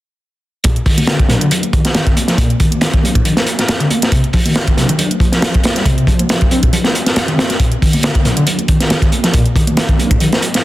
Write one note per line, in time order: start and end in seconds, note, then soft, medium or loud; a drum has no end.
0.64 0.76 A#2 medium
0.64 kick medium
0.64 closed hi-hat medium
0.64 closed hi-hat soft
0.76 closed hi-hat soft
0.86 0.97 D#3 medium
0.86 kick medium
0.86 open hi-hat medium
0.97 1.28 D3 medium
0.97 closed hi-hat medium
0.97 high conga medium
1.07 snare loud
1.07 closed hi-hat medium
1.07 closed hi-hat soft
1.19 kick medium
1.19 closed hi-hat soft
1.29 1.35 A#2 medium
1.29 snare soft
1.29 closed hi-hat medium
1.29 low conga medium
1.41 1.49 D3 medium
1.41 closed hi-hat medium
1.51 closed hi-hat soft
1.51 closed hi-hat medium
1.51 low conga medium
1.63 closed hi-hat soft
1.63 high conga medium
1.73 2.15 D#3 medium
1.73 kick medium
1.73 closed hi-hat medium
1.85 snare soft
1.85 closed hi-hat medium
1.95 snare loud
1.95 closed hi-hat soft
1.95 closed hi-hat medium
2.07 kick medium
2.07 closed hi-hat soft
2.16 closed hi-hat medium
2.16 high conga medium
2.28 2.38 F3 medium
2.28 snare soft
2.28 closed hi-hat medium
2.38 2.59 A#2 medium
2.38 kick medium
2.38 closed hi-hat soft
2.38 closed hi-hat medium
2.50 closed hi-hat soft
2.60 3.02 D#3 medium
2.60 kick medium
2.60 closed hi-hat medium
2.71 closed hi-hat medium
2.71 high conga medium
2.81 snare medium
2.81 closed hi-hat medium
2.81 closed hi-hat soft
2.94 kick medium
2.94 closed hi-hat soft
3.03 3.13 A#3 medium
3.03 closed hi-hat medium
3.03 low conga medium
3.15 3.20 A2 medium
3.15 kick medium
3.15 closed hi-hat medium
3.25 3.31 D#3 medium
3.25 closed hi-hat soft
3.25 closed hi-hat medium
3.25 low conga medium
3.37 snare soft
3.37 closed hi-hat soft
3.37 high conga medium
3.46 closed hi-hat medium
3.59 snare soft
3.59 closed hi-hat medium
3.68 snare medium
3.68 closed hi-hat medium
3.80 3.89 D3 medium
3.80 closed hi-hat soft
3.90 4.00 A#3 medium
3.90 closed hi-hat medium
3.90 high conga medium
4.02 snare soft
4.02 closed hi-hat medium
4.12 4.23 C3 medium
4.12 kick medium
4.12 closed hi-hat soft
4.12 closed hi-hat medium
4.24 closed hi-hat soft
4.33 4.44 F3 medium
4.33 kick medium
4.33 open hi-hat medium
4.46 4.76 D#3 medium
4.46 closed hi-hat medium
4.46 high conga medium
4.56 snare loud
4.56 closed hi-hat soft
4.56 closed hi-hat medium
4.68 kick medium
4.68 closed hi-hat soft
4.77 4.83 C3 medium
4.77 snare soft
4.77 closed hi-hat medium
4.77 low conga medium
4.89 4.97 D#3 medium
4.89 closed hi-hat medium
4.99 closed hi-hat medium
4.99 closed hi-hat soft
4.99 low conga medium
5.11 closed hi-hat soft
5.11 high conga medium
5.20 5.63 F3 medium
5.20 kick medium
5.20 closed hi-hat medium
5.32 snare soft
5.32 closed hi-hat medium
5.42 snare loud
5.42 closed hi-hat soft
5.42 closed hi-hat medium
5.54 kick medium
5.54 closed hi-hat soft
5.63 snare loud
5.63 closed hi-hat medium
5.63 high conga medium
5.76 5.86 G3 medium
5.76 snare soft
5.76 closed hi-hat medium
5.85 6.07 C3 medium
5.85 kick loud
5.85 closed hi-hat soft
5.85 closed hi-hat medium
5.98 closed hi-hat soft
6.07 6.50 F3 medium
6.07 kick medium
6.07 closed hi-hat medium
6.19 closed hi-hat medium
6.19 high conga medium
6.29 snare loud
6.29 closed hi-hat soft
6.29 closed hi-hat medium
6.41 kick medium
6.41 closed hi-hat soft
6.51 6.61 C4 medium
6.51 closed hi-hat medium
6.51 low conga medium
6.63 6.68 A#2 medium
6.63 kick medium
6.63 closed hi-hat medium
6.73 6.79 F3 medium
6.73 closed hi-hat soft
6.73 closed hi-hat medium
6.73 low conga medium
6.84 snare medium
6.84 closed hi-hat soft
6.84 high conga medium
6.95 closed hi-hat medium
7.06 snare soft
7.06 closed hi-hat medium
7.16 snare loud
7.16 closed hi-hat soft
7.16 closed hi-hat medium
7.28 7.37 D#3 medium
7.28 closed hi-hat soft
7.38 7.48 C4 medium
7.38 snare medium
7.38 closed hi-hat medium
7.38 high conga medium
7.50 snare soft
7.50 closed hi-hat medium
7.60 7.71 A#2 medium
7.60 kick medium
7.60 closed hi-hat soft
7.60 closed hi-hat medium
7.72 closed hi-hat soft
7.81 7.92 D#3 medium
7.81 kick medium
7.81 open hi-hat medium
7.93 8.24 D3 medium
7.93 closed hi-hat medium
7.93 high conga medium
8.03 snare loud
8.03 closed hi-hat medium
8.03 closed hi-hat soft
8.15 kick medium
8.15 closed hi-hat soft
8.25 8.31 A#2 medium
8.25 snare soft
8.25 closed hi-hat medium
8.25 low conga medium
8.37 8.45 D3 medium
8.37 closed hi-hat medium
8.46 closed hi-hat soft
8.46 closed hi-hat medium
8.46 low conga medium
8.58 closed hi-hat soft
8.58 high conga medium
8.68 9.11 D#3 medium
8.68 kick medium
8.68 closed hi-hat medium
8.80 snare soft
8.80 closed hi-hat medium
8.90 snare loud
8.90 closed hi-hat soft
8.90 closed hi-hat medium
9.02 kick medium
9.02 closed hi-hat soft
9.12 closed hi-hat medium
9.12 high conga medium
9.24 9.33 F3 medium
9.24 snare soft
9.24 closed hi-hat medium
9.34 9.54 A#2 medium
9.34 kick medium
9.34 closed hi-hat soft
9.34 closed hi-hat medium
9.46 closed hi-hat soft
9.56 9.98 D#3 medium
9.56 kick medium
9.56 closed hi-hat medium
9.67 closed hi-hat medium
9.67 high conga medium
9.77 snare loud
9.77 closed hi-hat soft
9.77 closed hi-hat medium
9.89 kick medium
9.89 closed hi-hat soft
9.99 10.08 A#3 medium
9.99 closed hi-hat medium
9.99 low conga medium
10.11 10.16 A2 medium
10.11 kick medium
10.11 closed hi-hat medium
10.20 10.26 D#3 medium
10.20 closed hi-hat soft
10.20 closed hi-hat medium
10.20 low conga medium
10.32 snare soft
10.32 closed hi-hat soft
10.32 high conga medium
10.42 closed hi-hat medium
10.54 snare soft
10.54 closed hi-hat medium